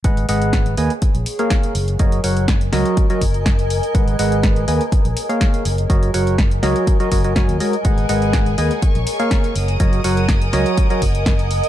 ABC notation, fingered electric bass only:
X:1
M:4/4
L:1/16
Q:1/4=123
K:F#
V:1 name="Fingered electric bass" clef=bass
G,,,2 G,,,4 D,, z2 A,,, z4 F,,,2 | F,,,2 F,,,4 C,, z3 F,,,4- F,,, z | G,,,2 G,,,4 D,, z2 A,,, z4 F,,,2 | F,,,2 F,,,4 C,, z3 F,,,3 D,, z2 |
G,,,2 G,,,4 D,, z2 A,,, z4 F,,,2 | z2 F,,,4 C,, z3 F,,,4- F,,, z |]